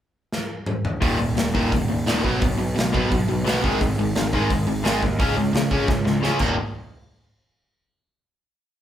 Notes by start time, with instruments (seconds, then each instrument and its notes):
0.32 snare
0.66 mid tom
0.85 floor tom
1.01 picked electric bass D#1, overdriven electric guitar D#2 A#2 D#3, kick, open hi-hat
1.19 picked electric bass D#1, overdriven electric guitar D#2 A#2
1.37 picked electric bass D#1, overdriven electric guitar D#2 A#2, snare, open hi-hat
1.55 picked electric bass D#1, overdriven electric guitar D#2 A#2 D#3, kick
1.72 picked electric bass D#1, overdriven electric guitar D#2 A#2, kick, open hi-hat
1.88 picked electric bass D#1, overdriven electric guitar D#2 A#2
2.06 picked electric bass D#1, overdriven electric guitar D#2 A#2 D#3, snare, open hi-hat
2.24 picked electric bass B1, overdriven electric guitar B2 F#3 B3, kick
2.41 picked electric bass B1, overdriven electric guitar B2 F#3, kick, open hi-hat
2.58 picked electric bass B1, overdriven electric guitar B2 F#3
2.76 picked electric bass B1, overdriven electric guitar B2 F#3, snare, open hi-hat
2.93 picked electric bass B1, overdriven electric guitar B2 F#3 B3, kick
3.11 picked electric bass B1, overdriven electric guitar B2 F#3, kick, open hi-hat
3.28 picked electric bass B1, overdriven electric guitar B2 F#3
3.46 picked electric bass B1, overdriven electric guitar B2 F#3 B3, snare, open hi-hat
3.63 picked electric bass G#1, overdriven electric guitar G#2 D#3 G#3, kick
3.81 picked electric bass G#1, overdriven electric guitar G#2 D#3, kick, open hi-hat
3.99 picked electric bass G#1, overdriven electric guitar G#2 D#3
4.15 picked electric bass G#1, overdriven electric guitar G#2 D#3, snare, open hi-hat
4.33 picked electric bass G#1, overdriven electric guitar G#2 D#3 G#3, kick
4.50 picked electric bass G#1, overdriven electric guitar G#2 D#3, kick, open hi-hat
4.67 picked electric bass G#1, overdriven electric guitar G#2 D#3
4.84 picked electric bass G#1, overdriven electric guitar G#2 D#3 G#3, snare, open hi-hat
5.02 picked electric bass D#2, overdriven electric guitar G#2 D#3, kick
5.19 picked electric bass C#2, overdriven electric guitar C#3 G#3 C#4, kick, open hi-hat
5.36 picked electric bass C#2, overdriven electric guitar C#3 G#3
5.53 picked electric bass C#2, overdriven electric guitar C#3 G#3, snare, open hi-hat
5.71 picked electric bass C#2, overdriven electric guitar C#3 G#3 C#4, kick
5.88 picked electric bass C#2, overdriven electric guitar C#3 G#3, kick, snare
6.05 picked electric bass C#2, overdriven electric guitar C#3 G#3, snare
6.23 picked electric bass C#2, overdriven electric guitar C#3 G#3 C#4, snare
6.39 picked electric bass D#1, overdriven electric guitar D#2 A#2 D#3 F#3 A#3 D#4, kick, crash